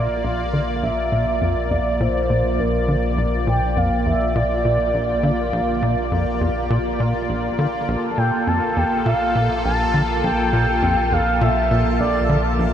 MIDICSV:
0, 0, Header, 1, 6, 480
1, 0, Start_track
1, 0, Tempo, 588235
1, 674, Time_signature, 4, 2, 24, 8
1, 10390, End_track
2, 0, Start_track
2, 0, Title_t, "Synth texture"
2, 0, Program_c, 0, 99
2, 0, Note_on_c, 0, 67, 85
2, 0, Note_on_c, 0, 79, 84
2, 6434, Note_on_c, 0, 81, 84
2, 6459, Note_off_c, 0, 79, 0
2, 10390, Note_off_c, 0, 67, 0
2, 10390, Note_off_c, 0, 81, 0
2, 10390, End_track
3, 0, Start_track
3, 0, Title_t, "Analog synth lead"
3, 0, Program_c, 1, 81
3, 0, Note_on_c, 1, 74, 102
3, 195, Note_on_c, 1, 77, 101
3, 208, Note_off_c, 1, 74, 0
3, 616, Note_off_c, 1, 77, 0
3, 620, Note_on_c, 1, 77, 74
3, 675, Note_on_c, 1, 76, 116
3, 687, Note_off_c, 1, 77, 0
3, 1397, Note_on_c, 1, 74, 95
3, 1409, Note_off_c, 1, 76, 0
3, 1636, Note_on_c, 1, 72, 98
3, 1649, Note_off_c, 1, 74, 0
3, 2120, Note_on_c, 1, 70, 79
3, 2133, Note_off_c, 1, 72, 0
3, 2477, Note_off_c, 1, 70, 0
3, 2840, Note_on_c, 1, 79, 106
3, 3080, Note_on_c, 1, 77, 103
3, 3092, Note_off_c, 1, 79, 0
3, 3313, Note_off_c, 1, 77, 0
3, 3318, Note_on_c, 1, 76, 97
3, 3556, Note_on_c, 1, 74, 99
3, 3568, Note_off_c, 1, 76, 0
3, 4273, Note_on_c, 1, 77, 93
3, 4285, Note_off_c, 1, 74, 0
3, 5233, Note_off_c, 1, 77, 0
3, 6615, Note_on_c, 1, 81, 72
3, 6675, Note_on_c, 1, 79, 100
3, 6687, Note_off_c, 1, 81, 0
3, 6917, Note_on_c, 1, 81, 98
3, 6930, Note_off_c, 1, 79, 0
3, 7157, Note_on_c, 1, 79, 105
3, 7169, Note_off_c, 1, 81, 0
3, 7394, Note_off_c, 1, 79, 0
3, 7399, Note_on_c, 1, 77, 105
3, 7844, Note_off_c, 1, 77, 0
3, 7878, Note_on_c, 1, 81, 107
3, 8323, Note_off_c, 1, 81, 0
3, 8358, Note_on_c, 1, 79, 111
3, 9079, Note_on_c, 1, 77, 95
3, 9092, Note_off_c, 1, 79, 0
3, 9318, Note_on_c, 1, 76, 93
3, 9330, Note_off_c, 1, 77, 0
3, 9791, Note_off_c, 1, 76, 0
3, 9796, Note_on_c, 1, 74, 77
3, 10130, Note_off_c, 1, 74, 0
3, 10390, End_track
4, 0, Start_track
4, 0, Title_t, "Analog synth pad"
4, 0, Program_c, 2, 89
4, 0, Note_on_c, 2, 58, 76
4, 0, Note_on_c, 2, 65, 65
4, 0, Note_on_c, 2, 74, 83
4, 6426, Note_off_c, 2, 74, 0
4, 6430, Note_on_c, 2, 69, 86
4, 10390, Note_off_c, 2, 58, 0
4, 10390, Note_off_c, 2, 65, 0
4, 10390, Note_off_c, 2, 69, 0
4, 10390, End_track
5, 0, Start_track
5, 0, Title_t, "Analog synth bass"
5, 0, Program_c, 3, 38
5, 194, Note_on_c, 3, 34, 74
5, 362, Note_off_c, 3, 34, 0
5, 435, Note_on_c, 3, 50, 65
5, 502, Note_off_c, 3, 50, 0
5, 676, Note_on_c, 3, 34, 97
5, 742, Note_off_c, 3, 34, 0
5, 914, Note_on_c, 3, 46, 75
5, 1026, Note_off_c, 3, 46, 0
5, 1154, Note_on_c, 3, 41, 76
5, 1266, Note_off_c, 3, 41, 0
5, 1394, Note_on_c, 3, 40, 69
5, 1461, Note_off_c, 3, 40, 0
5, 1635, Note_on_c, 3, 46, 95
5, 1702, Note_off_c, 3, 46, 0
5, 1875, Note_on_c, 3, 46, 71
5, 1986, Note_off_c, 3, 46, 0
5, 2114, Note_on_c, 3, 34, 73
5, 2282, Note_off_c, 3, 34, 0
5, 2352, Note_on_c, 3, 50, 71
5, 2420, Note_off_c, 3, 50, 0
5, 2592, Note_on_c, 3, 34, 97
5, 2660, Note_off_c, 3, 34, 0
5, 2832, Note_on_c, 3, 46, 74
5, 2945, Note_off_c, 3, 46, 0
5, 3073, Note_on_c, 3, 41, 71
5, 3186, Note_off_c, 3, 41, 0
5, 3314, Note_on_c, 3, 40, 72
5, 3381, Note_off_c, 3, 40, 0
5, 3553, Note_on_c, 3, 46, 94
5, 3621, Note_off_c, 3, 46, 0
5, 3793, Note_on_c, 3, 46, 68
5, 3905, Note_off_c, 3, 46, 0
5, 4031, Note_on_c, 3, 34, 71
5, 4200, Note_off_c, 3, 34, 0
5, 4269, Note_on_c, 3, 50, 68
5, 4339, Note_off_c, 3, 50, 0
5, 4509, Note_on_c, 3, 34, 103
5, 4578, Note_off_c, 3, 34, 0
5, 4752, Note_on_c, 3, 46, 74
5, 4865, Note_off_c, 3, 46, 0
5, 4991, Note_on_c, 3, 41, 74
5, 5104, Note_off_c, 3, 41, 0
5, 5230, Note_on_c, 3, 40, 67
5, 5299, Note_off_c, 3, 40, 0
5, 5470, Note_on_c, 3, 46, 92
5, 5539, Note_off_c, 3, 46, 0
5, 5712, Note_on_c, 3, 46, 76
5, 5825, Note_off_c, 3, 46, 0
5, 5950, Note_on_c, 3, 34, 70
5, 6120, Note_off_c, 3, 34, 0
5, 6190, Note_on_c, 3, 50, 73
5, 6259, Note_off_c, 3, 50, 0
5, 6431, Note_on_c, 3, 34, 97
5, 6500, Note_off_c, 3, 34, 0
5, 6672, Note_on_c, 3, 46, 72
5, 6785, Note_off_c, 3, 46, 0
5, 6912, Note_on_c, 3, 41, 74
5, 7025, Note_off_c, 3, 41, 0
5, 7151, Note_on_c, 3, 40, 71
5, 7220, Note_off_c, 3, 40, 0
5, 7391, Note_on_c, 3, 46, 97
5, 7459, Note_off_c, 3, 46, 0
5, 7633, Note_on_c, 3, 46, 71
5, 7745, Note_off_c, 3, 46, 0
5, 7873, Note_on_c, 3, 34, 77
5, 8041, Note_off_c, 3, 34, 0
5, 8111, Note_on_c, 3, 50, 71
5, 8179, Note_off_c, 3, 50, 0
5, 8352, Note_on_c, 3, 34, 99
5, 8420, Note_off_c, 3, 34, 0
5, 8591, Note_on_c, 3, 46, 75
5, 8705, Note_off_c, 3, 46, 0
5, 8831, Note_on_c, 3, 41, 73
5, 8944, Note_off_c, 3, 41, 0
5, 9073, Note_on_c, 3, 40, 69
5, 9141, Note_off_c, 3, 40, 0
5, 9312, Note_on_c, 3, 46, 99
5, 9380, Note_off_c, 3, 46, 0
5, 9554, Note_on_c, 3, 46, 72
5, 9666, Note_off_c, 3, 46, 0
5, 9792, Note_on_c, 3, 34, 72
5, 9961, Note_off_c, 3, 34, 0
5, 10032, Note_on_c, 3, 50, 70
5, 10100, Note_off_c, 3, 50, 0
5, 10270, Note_on_c, 3, 34, 94
5, 10339, Note_off_c, 3, 34, 0
5, 10390, End_track
6, 0, Start_track
6, 0, Title_t, "Analog synth bass"
6, 0, Program_c, 4, 38
6, 0, Note_on_c, 4, 34, 86
6, 6410, Note_off_c, 4, 34, 0
6, 6434, Note_on_c, 4, 34, 85
6, 10390, Note_off_c, 4, 34, 0
6, 10390, End_track
0, 0, End_of_file